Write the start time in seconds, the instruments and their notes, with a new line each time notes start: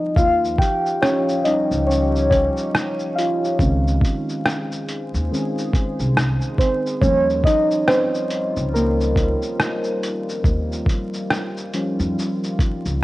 Already playing: ambient pad F3 C4 D#4 G#5, synth keys G3 G#3 D#4 D#5
0.16 upright bass D#2, ambient pad C#4 G4, synth keys F4 F5, kick, shaker
0.45 shaker
0.58 synth keys G4 G5, kick, closed hi-hat, shaker
0.86 shaker
1.01 synth keys C#4 C#5, cross-stick
1.06 shaker
1.29 shaker
1.44 synth keys F3 G3 C#4 D#4 D#5, closed hi-hat, shaker
1.71 upright bass C#2, shaker
1.87 synth keys C#4 C#5
1.91 shaker
2.16 shaker
2.30 synth keys C#4 C#5, kick, closed hi-hat, shaker
2.57 shaker
2.74 cross-stick, shaker
2.99 shaker
3.15 synth keys F4 F5, closed hi-hat, shaker
3.44 shaker
3.59 upright bass C#2, ambient pad D#3 G#4 C5, synth keys D#3 G#3 C4 C#4, kick, shaker
3.88 shaker
4.01 kick, closed hi-hat, shaker
4.29 shaker
4.46 cross-stick, shaker
4.72 shaker
4.88 closed hi-hat, shaker
5.14 upright bass D#2, shaker
5.31 synth keys D#3 G#3 C4 C#4, shaker
5.58 shaker
5.74 kick, closed hi-hat, shaker
6.00 upright bass C2, shaker
6.17 cross-stick, shaker
6.42 shaker
6.59 synth keys C4 C5, kick, closed hi-hat, shaker
6.87 shaker
7.01 upright bass D#2, synth keys F3 G3 C#4 C#5, ambient pad G3 F4, kick, shaker
7.30 shaker
7.44 synth keys D#4 D#5, kick, closed hi-hat, shaker
7.71 shaker
7.88 synth keys C4 C5, cross-stick, shaker
8.14 shaker
8.30 closed hi-hat, shaker
8.57 upright bass C#2, shaker
8.74 synth keys A#3 A#4, shaker
9.01 shaker
9.16 kick, closed hi-hat, shaker
9.42 shaker
9.60 cross-stick, shaker
9.84 shaker
10.03 closed hi-hat, shaker
10.29 shaker
10.44 upright bass D#2, kick, shaker
10.73 shaker
10.86 kick, closed hi-hat, shaker
11.14 shaker
11.31 cross-stick, shaker
11.57 shaker
11.74 synth keys F3 G3 C#4, closed hi-hat, shaker
12.00 upright bass F2, shaker
12.19 shaker
12.44 shaker
12.59 kick, closed hi-hat, shaker
12.86 upright bass C#2, shaker